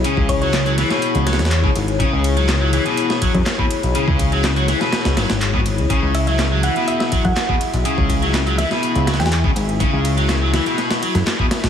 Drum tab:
RD |----x-------x-------x-------x---|----x-------x-------x-------x---|----x-------x-------x-------x---|----x-------x-------x-------x---|
HH |x---x-x-x-x-x-x-x-x-xxxxx---x-x-|x---x-x-x---x-x-x-x-x-x-x---x-x-|x---x-x-x-x-x-x-x-x-x-x-x---x-x-|x---x-x-x---x-x-x-x-x-x-x---x-x-|
CP |--------x---------------x-------|--------x---------------x-------|--------x---------------x-------|--------x---------------x-------|
SD |--------o---o-o-----oooo--------|--------o---------o-----o-------|--------o---o-o-o-o-o-o---------|--------o---------o-----o-------|
BD |--o-o---------------------o-----|o-------------------o-o---o-----|--o-o---------------------o-----|o-------------------o-o---o-----|

RD |----x-------x-------x-------x---|----x-------x-------x-------x---|
HH |x---x-x-x-x-x-x-x-x-xxxxx---x-x-|x---x-x-x---x-x-x-x-x-x-x---x-x-|
CP |--------x---------------x-------|--------x---------------x-------|
SD |--------o---o-o-----oooo--------|--------o---o---o-o---o-o---o-o-|
BD |--o-o---------------------o-----|o-------------------------o-----|